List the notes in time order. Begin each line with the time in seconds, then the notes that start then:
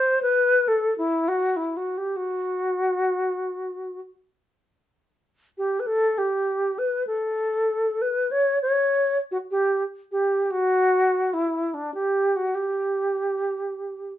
Already playing: C5
0.22 B4
0.68 A4
0.98 E4
1.28 F#4
1.56 E4
1.77 F#4
1.98 G4
2.16 F#4
5.58 G4
5.80 B4
5.86 A4
6.18 G4
6.78 B4
7.07 A4
8.02 B4
8.31 C#5
8.62 C#5
9.31 F#4
9.51 G4
10.12 G4
10.45 G4
10.51 F#4
11.33 E4
11.74 D4
11.94 G4
12.36 F#4
12.55 G4